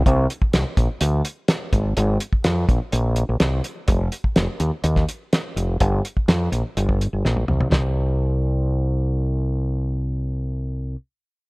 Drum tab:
HH |x-x-x-x-x-x-x-x-|x-x-x-x-x-x-x-x-|x-x-x-x-x-x-x-x-|x-x-x-x-x-x-----|
SD |----o-------o---|----o-------o---|----o----o--o---|----o-------o---|
T1 |----------------|----------------|----------------|-------------o--|
T2 |----------------|----------------|----------------|--------------o-|
FT |----------------|----------------|----------------|---------------o|
BD |o--o--o-------o-|---o--o---------|o--o-----o------|o--o-----o------|

HH |----------------|----------------|
SD |o---------------|----------------|
T1 |----------------|----------------|
T2 |----------------|----------------|
FT |o---------------|----------------|
BD |----------------|----------------|